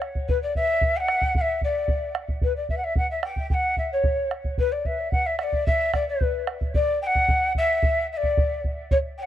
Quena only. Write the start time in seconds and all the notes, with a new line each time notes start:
0.28 B4
0.42 D5
0.56 E5
0.96 F#5 G5
1.37 F#5
1.41 E5
1.64 D5
2.43 B4
2.56 D5
2.69 E5
2.77 F#5
2.84 E5
2.97 F#5
3.11 E5
3.24 G5
3.50 F#5 G5
3.78 E5
3.92 C#5
4.59 B4
4.72 D5
4.86 E5
5.11 F#5
5.26 E5
5.39 E5
5.43 D5
5.66 E5
5.94 D5
6.08 B4
6.75 D5
7.02 G5
7.06 F#5
7.58 E5
8.12 E5
8.17 D5
8.91 C#5
9.18 G5
9.22 F#5